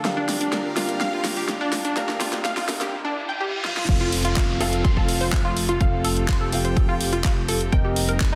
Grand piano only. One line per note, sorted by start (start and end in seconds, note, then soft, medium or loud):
0.05 0.74 D4 medium
0.05 0.74 G4 medium
0.05 0.74 A#4 medium
0.05 0.74 F5 loud
0.77 1.94 D4 loud
0.77 1.94 G4 medium
0.77 1.94 A#4 medium
0.77 1.94 F5 loud
1.96 2.66 D4 loud
1.96 2.66 G4 medium
1.96 2.66 A#4 medium
1.96 2.66 F5 loud
2.68 2.93 D4 medium
2.68 2.93 G4 medium
2.68 2.93 A#4 medium
2.68 2.93 F5 loud
3.88 4.58 C4 medium
3.88 4.58 F4 medium
3.88 4.58 A4 medium
3.88 4.58 F5 loud
4.61 5.78 C4 loud
4.61 5.78 F4 medium
4.61 5.78 A4 medium
4.61 5.78 F5 loud
5.81 6.50 C4 medium
5.81 6.50 F4 medium
5.81 6.50 A4 medium
5.81 6.50 F5 loud
6.53 7.70 C4 medium
6.53 7.70 F4 medium
6.53 7.70 A4 medium
6.53 7.70 F5 medium
7.73 8.35 C4 medium
7.73 8.35 G4 medium
7.73 8.35 A#4 medium
7.73 8.35 D#5 loud